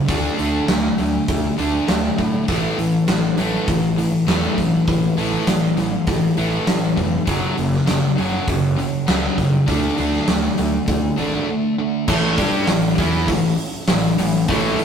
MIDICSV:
0, 0, Header, 1, 8, 480
1, 0, Start_track
1, 0, Tempo, 600000
1, 72, Time_signature, 4, 2, 24, 8
1, 11878, End_track
2, 0, Start_track
2, 0, Title_t, "Tonewheel organ"
2, 0, Program_c, 0, 16
2, 68, Note_on_c, 0, 69, 63
2, 73, Note_on_c, 0, 62, 61
2, 73, Note_on_c, 0, 76, 73
2, 1969, Note_off_c, 0, 69, 0
2, 1971, Note_off_c, 0, 62, 0
2, 1971, Note_off_c, 0, 76, 0
2, 1987, Note_on_c, 0, 71, 67
2, 1988, Note_on_c, 0, 64, 59
2, 1993, Note_on_c, 0, 57, 62
2, 5791, Note_off_c, 0, 64, 0
2, 5791, Note_off_c, 0, 71, 0
2, 5794, Note_off_c, 0, 57, 0
2, 5828, Note_on_c, 0, 66, 57
2, 5828, Note_on_c, 0, 73, 56
2, 5829, Note_on_c, 0, 78, 76
2, 7728, Note_off_c, 0, 66, 0
2, 7728, Note_off_c, 0, 73, 0
2, 7729, Note_off_c, 0, 78, 0
2, 7753, Note_on_c, 0, 69, 58
2, 7754, Note_on_c, 0, 76, 73
2, 7756, Note_on_c, 0, 62, 64
2, 9655, Note_off_c, 0, 69, 0
2, 9655, Note_off_c, 0, 76, 0
2, 9656, Note_off_c, 0, 62, 0
2, 9679, Note_on_c, 0, 76, 68
2, 9682, Note_on_c, 0, 61, 64
2, 9684, Note_on_c, 0, 69, 62
2, 11878, Note_off_c, 0, 61, 0
2, 11878, Note_off_c, 0, 69, 0
2, 11878, Note_off_c, 0, 76, 0
2, 11878, End_track
3, 0, Start_track
3, 0, Title_t, "Distorted electric guitar"
3, 0, Program_c, 1, 30
3, 63, Note_on_c, 1, 50, 78
3, 65, Note_on_c, 1, 57, 69
3, 71, Note_on_c, 1, 62, 92
3, 287, Note_off_c, 1, 50, 0
3, 291, Note_off_c, 1, 57, 0
3, 297, Note_off_c, 1, 62, 0
3, 297, Note_on_c, 1, 50, 88
3, 301, Note_on_c, 1, 57, 94
3, 306, Note_on_c, 1, 62, 94
3, 530, Note_off_c, 1, 50, 0
3, 532, Note_off_c, 1, 57, 0
3, 534, Note_off_c, 1, 62, 0
3, 546, Note_on_c, 1, 50, 80
3, 548, Note_on_c, 1, 57, 78
3, 765, Note_off_c, 1, 50, 0
3, 766, Note_off_c, 1, 57, 0
3, 787, Note_on_c, 1, 50, 59
3, 787, Note_on_c, 1, 57, 72
3, 1005, Note_off_c, 1, 50, 0
3, 1005, Note_off_c, 1, 57, 0
3, 1029, Note_on_c, 1, 50, 65
3, 1032, Note_on_c, 1, 57, 70
3, 1246, Note_off_c, 1, 50, 0
3, 1247, Note_off_c, 1, 57, 0
3, 1264, Note_on_c, 1, 50, 80
3, 1268, Note_on_c, 1, 62, 96
3, 1269, Note_on_c, 1, 57, 88
3, 1492, Note_off_c, 1, 50, 0
3, 1493, Note_off_c, 1, 57, 0
3, 1494, Note_off_c, 1, 62, 0
3, 1501, Note_on_c, 1, 50, 73
3, 1503, Note_on_c, 1, 57, 75
3, 1721, Note_off_c, 1, 50, 0
3, 1722, Note_off_c, 1, 57, 0
3, 1743, Note_on_c, 1, 50, 59
3, 1745, Note_on_c, 1, 57, 70
3, 1962, Note_off_c, 1, 50, 0
3, 1963, Note_off_c, 1, 57, 0
3, 1986, Note_on_c, 1, 45, 82
3, 1989, Note_on_c, 1, 52, 79
3, 1994, Note_on_c, 1, 57, 94
3, 2213, Note_off_c, 1, 45, 0
3, 2214, Note_off_c, 1, 52, 0
3, 2217, Note_off_c, 1, 57, 0
3, 2228, Note_on_c, 1, 45, 67
3, 2235, Note_on_c, 1, 52, 85
3, 2444, Note_off_c, 1, 45, 0
3, 2448, Note_off_c, 1, 52, 0
3, 2464, Note_on_c, 1, 45, 64
3, 2470, Note_on_c, 1, 52, 74
3, 2682, Note_off_c, 1, 45, 0
3, 2685, Note_off_c, 1, 52, 0
3, 2705, Note_on_c, 1, 45, 78
3, 2706, Note_on_c, 1, 52, 88
3, 2713, Note_on_c, 1, 57, 83
3, 2932, Note_off_c, 1, 45, 0
3, 2932, Note_off_c, 1, 52, 0
3, 2936, Note_off_c, 1, 57, 0
3, 2946, Note_on_c, 1, 45, 66
3, 2946, Note_on_c, 1, 52, 68
3, 3163, Note_off_c, 1, 45, 0
3, 3163, Note_off_c, 1, 52, 0
3, 3188, Note_on_c, 1, 45, 64
3, 3192, Note_on_c, 1, 52, 75
3, 3403, Note_off_c, 1, 45, 0
3, 3405, Note_off_c, 1, 52, 0
3, 3416, Note_on_c, 1, 45, 84
3, 3419, Note_on_c, 1, 52, 97
3, 3425, Note_on_c, 1, 57, 102
3, 3647, Note_off_c, 1, 45, 0
3, 3648, Note_off_c, 1, 52, 0
3, 3651, Note_off_c, 1, 57, 0
3, 3658, Note_on_c, 1, 45, 66
3, 3663, Note_on_c, 1, 52, 79
3, 3878, Note_off_c, 1, 45, 0
3, 3880, Note_off_c, 1, 52, 0
3, 3902, Note_on_c, 1, 45, 75
3, 3905, Note_on_c, 1, 52, 76
3, 4120, Note_off_c, 1, 45, 0
3, 4121, Note_off_c, 1, 52, 0
3, 4138, Note_on_c, 1, 45, 85
3, 4139, Note_on_c, 1, 52, 99
3, 4144, Note_on_c, 1, 57, 96
3, 4367, Note_off_c, 1, 45, 0
3, 4367, Note_off_c, 1, 52, 0
3, 4370, Note_off_c, 1, 57, 0
3, 4378, Note_on_c, 1, 45, 77
3, 4382, Note_on_c, 1, 52, 85
3, 4597, Note_off_c, 1, 45, 0
3, 4599, Note_off_c, 1, 52, 0
3, 4617, Note_on_c, 1, 45, 68
3, 4619, Note_on_c, 1, 52, 66
3, 4836, Note_off_c, 1, 45, 0
3, 4838, Note_off_c, 1, 52, 0
3, 4857, Note_on_c, 1, 45, 69
3, 4859, Note_on_c, 1, 52, 83
3, 5076, Note_off_c, 1, 45, 0
3, 5078, Note_off_c, 1, 52, 0
3, 5098, Note_on_c, 1, 45, 87
3, 5101, Note_on_c, 1, 52, 90
3, 5101, Note_on_c, 1, 57, 85
3, 5324, Note_off_c, 1, 45, 0
3, 5328, Note_off_c, 1, 52, 0
3, 5328, Note_off_c, 1, 57, 0
3, 5334, Note_on_c, 1, 45, 81
3, 5339, Note_on_c, 1, 52, 77
3, 5555, Note_off_c, 1, 45, 0
3, 5558, Note_off_c, 1, 52, 0
3, 5570, Note_on_c, 1, 45, 65
3, 5579, Note_on_c, 1, 52, 65
3, 5793, Note_off_c, 1, 45, 0
3, 5797, Note_off_c, 1, 52, 0
3, 5806, Note_on_c, 1, 42, 85
3, 5813, Note_on_c, 1, 49, 81
3, 5818, Note_on_c, 1, 54, 88
3, 6041, Note_off_c, 1, 42, 0
3, 6044, Note_off_c, 1, 49, 0
3, 6046, Note_off_c, 1, 54, 0
3, 6053, Note_on_c, 1, 42, 77
3, 6054, Note_on_c, 1, 49, 75
3, 6274, Note_off_c, 1, 42, 0
3, 6275, Note_off_c, 1, 49, 0
3, 6292, Note_on_c, 1, 42, 65
3, 6297, Note_on_c, 1, 49, 83
3, 6514, Note_off_c, 1, 42, 0
3, 6517, Note_off_c, 1, 49, 0
3, 6532, Note_on_c, 1, 42, 82
3, 6534, Note_on_c, 1, 49, 86
3, 6539, Note_on_c, 1, 54, 80
3, 6762, Note_off_c, 1, 42, 0
3, 6765, Note_off_c, 1, 49, 0
3, 6767, Note_off_c, 1, 54, 0
3, 6772, Note_on_c, 1, 42, 61
3, 6773, Note_on_c, 1, 49, 64
3, 6994, Note_off_c, 1, 42, 0
3, 6995, Note_off_c, 1, 49, 0
3, 7012, Note_on_c, 1, 42, 73
3, 7018, Note_on_c, 1, 49, 75
3, 7234, Note_off_c, 1, 42, 0
3, 7237, Note_off_c, 1, 49, 0
3, 7254, Note_on_c, 1, 42, 82
3, 7258, Note_on_c, 1, 49, 102
3, 7258, Note_on_c, 1, 54, 99
3, 7485, Note_off_c, 1, 42, 0
3, 7487, Note_off_c, 1, 54, 0
3, 7488, Note_off_c, 1, 49, 0
3, 7496, Note_on_c, 1, 42, 70
3, 7501, Note_on_c, 1, 49, 70
3, 7717, Note_off_c, 1, 42, 0
3, 7719, Note_off_c, 1, 49, 0
3, 7733, Note_on_c, 1, 50, 81
3, 7736, Note_on_c, 1, 57, 77
3, 7740, Note_on_c, 1, 62, 88
3, 7965, Note_off_c, 1, 50, 0
3, 7967, Note_off_c, 1, 57, 0
3, 7969, Note_off_c, 1, 62, 0
3, 7975, Note_on_c, 1, 50, 99
3, 7978, Note_on_c, 1, 57, 100
3, 7983, Note_on_c, 1, 62, 96
3, 8206, Note_off_c, 1, 50, 0
3, 8208, Note_off_c, 1, 57, 0
3, 8210, Note_off_c, 1, 62, 0
3, 8217, Note_on_c, 1, 50, 70
3, 8219, Note_on_c, 1, 57, 82
3, 8438, Note_off_c, 1, 50, 0
3, 8439, Note_off_c, 1, 57, 0
3, 8463, Note_on_c, 1, 50, 65
3, 8464, Note_on_c, 1, 57, 66
3, 8681, Note_off_c, 1, 50, 0
3, 8682, Note_off_c, 1, 57, 0
3, 8707, Note_on_c, 1, 50, 67
3, 8708, Note_on_c, 1, 57, 72
3, 8924, Note_off_c, 1, 50, 0
3, 8924, Note_off_c, 1, 57, 0
3, 8939, Note_on_c, 1, 50, 95
3, 8943, Note_on_c, 1, 57, 88
3, 8944, Note_on_c, 1, 62, 88
3, 9170, Note_off_c, 1, 50, 0
3, 9172, Note_off_c, 1, 57, 0
3, 9172, Note_off_c, 1, 62, 0
3, 9181, Note_on_c, 1, 50, 69
3, 9183, Note_on_c, 1, 57, 82
3, 9402, Note_off_c, 1, 50, 0
3, 9402, Note_off_c, 1, 57, 0
3, 9428, Note_on_c, 1, 50, 66
3, 9433, Note_on_c, 1, 57, 69
3, 9645, Note_off_c, 1, 50, 0
3, 9648, Note_off_c, 1, 57, 0
3, 9663, Note_on_c, 1, 45, 90
3, 9667, Note_on_c, 1, 52, 89
3, 9671, Note_on_c, 1, 57, 95
3, 9900, Note_off_c, 1, 45, 0
3, 9902, Note_off_c, 1, 52, 0
3, 9904, Note_off_c, 1, 57, 0
3, 9908, Note_on_c, 1, 55, 92
3, 9909, Note_on_c, 1, 62, 110
3, 9914, Note_on_c, 1, 67, 106
3, 10143, Note_off_c, 1, 55, 0
3, 10143, Note_off_c, 1, 62, 0
3, 10146, Note_off_c, 1, 67, 0
3, 10150, Note_on_c, 1, 45, 60
3, 10151, Note_on_c, 1, 52, 67
3, 10343, Note_off_c, 1, 45, 0
3, 10344, Note_off_c, 1, 52, 0
3, 10389, Note_on_c, 1, 52, 88
3, 10390, Note_on_c, 1, 59, 82
3, 10392, Note_on_c, 1, 64, 98
3, 10618, Note_off_c, 1, 52, 0
3, 10623, Note_on_c, 1, 45, 56
3, 10624, Note_off_c, 1, 59, 0
3, 10626, Note_off_c, 1, 64, 0
3, 10627, Note_on_c, 1, 52, 64
3, 10821, Note_off_c, 1, 45, 0
3, 10823, Note_off_c, 1, 52, 0
3, 11106, Note_on_c, 1, 45, 73
3, 11110, Note_on_c, 1, 52, 77
3, 11303, Note_off_c, 1, 45, 0
3, 11305, Note_off_c, 1, 52, 0
3, 11349, Note_on_c, 1, 45, 66
3, 11353, Note_on_c, 1, 52, 72
3, 11545, Note_off_c, 1, 45, 0
3, 11547, Note_off_c, 1, 52, 0
3, 11587, Note_on_c, 1, 45, 94
3, 11587, Note_on_c, 1, 52, 97
3, 11594, Note_on_c, 1, 57, 100
3, 11825, Note_off_c, 1, 45, 0
3, 11825, Note_off_c, 1, 52, 0
3, 11828, Note_off_c, 1, 57, 0
3, 11878, End_track
4, 0, Start_track
4, 0, Title_t, "Fingered electric bass"
4, 0, Program_c, 2, 33
4, 66, Note_on_c, 2, 38, 87
4, 214, Note_off_c, 2, 38, 0
4, 312, Note_on_c, 2, 38, 83
4, 458, Note_off_c, 2, 38, 0
4, 549, Note_on_c, 2, 38, 85
4, 697, Note_off_c, 2, 38, 0
4, 786, Note_on_c, 2, 38, 88
4, 934, Note_off_c, 2, 38, 0
4, 1027, Note_on_c, 2, 38, 83
4, 1175, Note_off_c, 2, 38, 0
4, 1271, Note_on_c, 2, 38, 87
4, 1417, Note_off_c, 2, 38, 0
4, 1509, Note_on_c, 2, 38, 85
4, 1656, Note_off_c, 2, 38, 0
4, 1749, Note_on_c, 2, 45, 76
4, 1896, Note_off_c, 2, 45, 0
4, 1988, Note_on_c, 2, 33, 87
4, 2135, Note_off_c, 2, 33, 0
4, 2225, Note_on_c, 2, 33, 85
4, 2373, Note_off_c, 2, 33, 0
4, 2465, Note_on_c, 2, 33, 86
4, 2612, Note_off_c, 2, 33, 0
4, 2701, Note_on_c, 2, 33, 79
4, 2850, Note_off_c, 2, 33, 0
4, 2942, Note_on_c, 2, 33, 76
4, 3236, Note_off_c, 2, 33, 0
4, 3417, Note_on_c, 2, 40, 77
4, 3566, Note_off_c, 2, 40, 0
4, 3659, Note_on_c, 2, 33, 68
4, 3808, Note_off_c, 2, 33, 0
4, 3900, Note_on_c, 2, 33, 78
4, 4048, Note_off_c, 2, 33, 0
4, 4142, Note_on_c, 2, 33, 86
4, 4289, Note_off_c, 2, 33, 0
4, 4376, Note_on_c, 2, 33, 87
4, 4525, Note_off_c, 2, 33, 0
4, 4612, Note_on_c, 2, 33, 85
4, 4763, Note_off_c, 2, 33, 0
4, 4855, Note_on_c, 2, 33, 74
4, 5004, Note_off_c, 2, 33, 0
4, 5102, Note_on_c, 2, 33, 85
4, 5249, Note_off_c, 2, 33, 0
4, 5338, Note_on_c, 2, 33, 78
4, 5486, Note_off_c, 2, 33, 0
4, 5577, Note_on_c, 2, 29, 81
4, 5726, Note_off_c, 2, 29, 0
4, 5818, Note_on_c, 2, 30, 76
4, 5967, Note_off_c, 2, 30, 0
4, 6068, Note_on_c, 2, 30, 90
4, 6213, Note_off_c, 2, 30, 0
4, 6303, Note_on_c, 2, 30, 94
4, 6450, Note_off_c, 2, 30, 0
4, 6548, Note_on_c, 2, 30, 85
4, 6693, Note_off_c, 2, 30, 0
4, 6780, Note_on_c, 2, 30, 81
4, 7075, Note_off_c, 2, 30, 0
4, 7266, Note_on_c, 2, 37, 82
4, 7412, Note_off_c, 2, 37, 0
4, 7500, Note_on_c, 2, 30, 80
4, 7648, Note_off_c, 2, 30, 0
4, 7746, Note_on_c, 2, 38, 78
4, 7893, Note_off_c, 2, 38, 0
4, 7988, Note_on_c, 2, 38, 83
4, 8134, Note_off_c, 2, 38, 0
4, 8226, Note_on_c, 2, 38, 79
4, 8373, Note_off_c, 2, 38, 0
4, 8465, Note_on_c, 2, 38, 84
4, 8613, Note_off_c, 2, 38, 0
4, 8704, Note_on_c, 2, 38, 79
4, 8852, Note_off_c, 2, 38, 0
4, 8946, Note_on_c, 2, 32, 85
4, 9094, Note_off_c, 2, 32, 0
4, 9664, Note_on_c, 2, 33, 91
4, 9890, Note_off_c, 2, 33, 0
4, 9904, Note_on_c, 2, 43, 94
4, 10131, Note_off_c, 2, 43, 0
4, 10147, Note_on_c, 2, 33, 79
4, 10373, Note_off_c, 2, 33, 0
4, 10386, Note_on_c, 2, 40, 91
4, 10612, Note_off_c, 2, 40, 0
4, 10622, Note_on_c, 2, 33, 66
4, 10851, Note_off_c, 2, 33, 0
4, 11115, Note_on_c, 2, 33, 77
4, 11339, Note_off_c, 2, 33, 0
4, 11356, Note_on_c, 2, 33, 75
4, 11580, Note_off_c, 2, 33, 0
4, 11589, Note_on_c, 2, 33, 94
4, 11816, Note_off_c, 2, 33, 0
4, 11878, End_track
5, 0, Start_track
5, 0, Title_t, "Muted distorted electric guitar strokes"
5, 11834, Note_on_c, 9, 29, 64
5, 11878, Note_off_c, 9, 29, 0
5, 11878, End_track
6, 0, Start_track
6, 0, Title_t, "Muted fingered electric bass strokes"
6, 11832, Note_on_c, 9, 29, 39
6, 11878, Note_off_c, 9, 29, 0
6, 11878, End_track
7, 0, Start_track
7, 0, Title_t, "Muted overdriven electric guitar strokes"
7, 11838, Note_on_c, 9, 29, 64
7, 11878, Note_off_c, 9, 29, 0
7, 11878, End_track
8, 0, Start_track
8, 0, Title_t, "Drums"
8, 68, Note_on_c, 9, 36, 105
8, 68, Note_on_c, 9, 46, 74
8, 148, Note_off_c, 9, 36, 0
8, 148, Note_off_c, 9, 46, 0
8, 308, Note_on_c, 9, 46, 55
8, 388, Note_off_c, 9, 46, 0
8, 547, Note_on_c, 9, 38, 105
8, 547, Note_on_c, 9, 46, 65
8, 627, Note_off_c, 9, 38, 0
8, 627, Note_off_c, 9, 46, 0
8, 786, Note_on_c, 9, 46, 51
8, 866, Note_off_c, 9, 46, 0
8, 1025, Note_on_c, 9, 46, 69
8, 1027, Note_on_c, 9, 36, 108
8, 1105, Note_off_c, 9, 46, 0
8, 1107, Note_off_c, 9, 36, 0
8, 1268, Note_on_c, 9, 46, 47
8, 1348, Note_off_c, 9, 46, 0
8, 1507, Note_on_c, 9, 38, 101
8, 1507, Note_on_c, 9, 46, 58
8, 1587, Note_off_c, 9, 38, 0
8, 1587, Note_off_c, 9, 46, 0
8, 1748, Note_on_c, 9, 36, 68
8, 1749, Note_on_c, 9, 46, 46
8, 1828, Note_off_c, 9, 36, 0
8, 1829, Note_off_c, 9, 46, 0
8, 1985, Note_on_c, 9, 46, 64
8, 1987, Note_on_c, 9, 36, 103
8, 2065, Note_off_c, 9, 46, 0
8, 2067, Note_off_c, 9, 36, 0
8, 2229, Note_on_c, 9, 46, 50
8, 2309, Note_off_c, 9, 46, 0
8, 2463, Note_on_c, 9, 38, 102
8, 2463, Note_on_c, 9, 46, 62
8, 2543, Note_off_c, 9, 38, 0
8, 2543, Note_off_c, 9, 46, 0
8, 2700, Note_on_c, 9, 46, 55
8, 2780, Note_off_c, 9, 46, 0
8, 2941, Note_on_c, 9, 46, 78
8, 2943, Note_on_c, 9, 36, 113
8, 3021, Note_off_c, 9, 46, 0
8, 3023, Note_off_c, 9, 36, 0
8, 3185, Note_on_c, 9, 46, 53
8, 3265, Note_off_c, 9, 46, 0
8, 3425, Note_on_c, 9, 38, 100
8, 3425, Note_on_c, 9, 46, 72
8, 3505, Note_off_c, 9, 38, 0
8, 3505, Note_off_c, 9, 46, 0
8, 3663, Note_on_c, 9, 36, 79
8, 3665, Note_on_c, 9, 46, 53
8, 3743, Note_off_c, 9, 36, 0
8, 3745, Note_off_c, 9, 46, 0
8, 3899, Note_on_c, 9, 46, 71
8, 3902, Note_on_c, 9, 36, 104
8, 3979, Note_off_c, 9, 46, 0
8, 3982, Note_off_c, 9, 36, 0
8, 4143, Note_on_c, 9, 46, 55
8, 4223, Note_off_c, 9, 46, 0
8, 4378, Note_on_c, 9, 38, 104
8, 4378, Note_on_c, 9, 46, 69
8, 4458, Note_off_c, 9, 38, 0
8, 4458, Note_off_c, 9, 46, 0
8, 4618, Note_on_c, 9, 46, 52
8, 4698, Note_off_c, 9, 46, 0
8, 4855, Note_on_c, 9, 46, 73
8, 4859, Note_on_c, 9, 36, 118
8, 4935, Note_off_c, 9, 46, 0
8, 4939, Note_off_c, 9, 36, 0
8, 5096, Note_on_c, 9, 46, 44
8, 5176, Note_off_c, 9, 46, 0
8, 5339, Note_on_c, 9, 38, 105
8, 5339, Note_on_c, 9, 46, 66
8, 5419, Note_off_c, 9, 38, 0
8, 5419, Note_off_c, 9, 46, 0
8, 5578, Note_on_c, 9, 46, 46
8, 5579, Note_on_c, 9, 36, 72
8, 5658, Note_off_c, 9, 46, 0
8, 5659, Note_off_c, 9, 36, 0
8, 5817, Note_on_c, 9, 46, 66
8, 5819, Note_on_c, 9, 36, 106
8, 5897, Note_off_c, 9, 46, 0
8, 5899, Note_off_c, 9, 36, 0
8, 6061, Note_on_c, 9, 46, 50
8, 6141, Note_off_c, 9, 46, 0
8, 6180, Note_on_c, 9, 38, 30
8, 6260, Note_off_c, 9, 38, 0
8, 6300, Note_on_c, 9, 38, 104
8, 6300, Note_on_c, 9, 46, 69
8, 6380, Note_off_c, 9, 38, 0
8, 6380, Note_off_c, 9, 46, 0
8, 6545, Note_on_c, 9, 46, 51
8, 6625, Note_off_c, 9, 46, 0
8, 6781, Note_on_c, 9, 36, 112
8, 6782, Note_on_c, 9, 46, 69
8, 6861, Note_off_c, 9, 36, 0
8, 6862, Note_off_c, 9, 46, 0
8, 7028, Note_on_c, 9, 46, 48
8, 7108, Note_off_c, 9, 46, 0
8, 7264, Note_on_c, 9, 38, 100
8, 7264, Note_on_c, 9, 46, 74
8, 7344, Note_off_c, 9, 38, 0
8, 7344, Note_off_c, 9, 46, 0
8, 7504, Note_on_c, 9, 36, 72
8, 7505, Note_on_c, 9, 46, 50
8, 7584, Note_off_c, 9, 36, 0
8, 7585, Note_off_c, 9, 46, 0
8, 7742, Note_on_c, 9, 46, 81
8, 7743, Note_on_c, 9, 36, 97
8, 7822, Note_off_c, 9, 46, 0
8, 7823, Note_off_c, 9, 36, 0
8, 7982, Note_on_c, 9, 46, 52
8, 8062, Note_off_c, 9, 46, 0
8, 8104, Note_on_c, 9, 38, 31
8, 8184, Note_off_c, 9, 38, 0
8, 8222, Note_on_c, 9, 38, 105
8, 8222, Note_on_c, 9, 46, 71
8, 8302, Note_off_c, 9, 38, 0
8, 8302, Note_off_c, 9, 46, 0
8, 8462, Note_on_c, 9, 46, 53
8, 8542, Note_off_c, 9, 46, 0
8, 8701, Note_on_c, 9, 46, 73
8, 8702, Note_on_c, 9, 36, 108
8, 8781, Note_off_c, 9, 46, 0
8, 8782, Note_off_c, 9, 36, 0
8, 8942, Note_on_c, 9, 46, 48
8, 9022, Note_off_c, 9, 46, 0
8, 9662, Note_on_c, 9, 49, 118
8, 9664, Note_on_c, 9, 36, 98
8, 9742, Note_off_c, 9, 49, 0
8, 9744, Note_off_c, 9, 36, 0
8, 9900, Note_on_c, 9, 46, 64
8, 9904, Note_on_c, 9, 36, 101
8, 9980, Note_off_c, 9, 46, 0
8, 9984, Note_off_c, 9, 36, 0
8, 10139, Note_on_c, 9, 38, 105
8, 10139, Note_on_c, 9, 46, 81
8, 10219, Note_off_c, 9, 38, 0
8, 10219, Note_off_c, 9, 46, 0
8, 10385, Note_on_c, 9, 46, 59
8, 10386, Note_on_c, 9, 36, 102
8, 10465, Note_off_c, 9, 46, 0
8, 10466, Note_off_c, 9, 36, 0
8, 10623, Note_on_c, 9, 46, 90
8, 10626, Note_on_c, 9, 36, 98
8, 10703, Note_off_c, 9, 46, 0
8, 10706, Note_off_c, 9, 36, 0
8, 10860, Note_on_c, 9, 46, 50
8, 10940, Note_off_c, 9, 46, 0
8, 11101, Note_on_c, 9, 38, 107
8, 11101, Note_on_c, 9, 46, 81
8, 11181, Note_off_c, 9, 38, 0
8, 11181, Note_off_c, 9, 46, 0
8, 11345, Note_on_c, 9, 46, 65
8, 11425, Note_off_c, 9, 46, 0
8, 11585, Note_on_c, 9, 46, 85
8, 11589, Note_on_c, 9, 36, 103
8, 11665, Note_off_c, 9, 46, 0
8, 11669, Note_off_c, 9, 36, 0
8, 11829, Note_on_c, 9, 46, 56
8, 11878, Note_off_c, 9, 46, 0
8, 11878, End_track
0, 0, End_of_file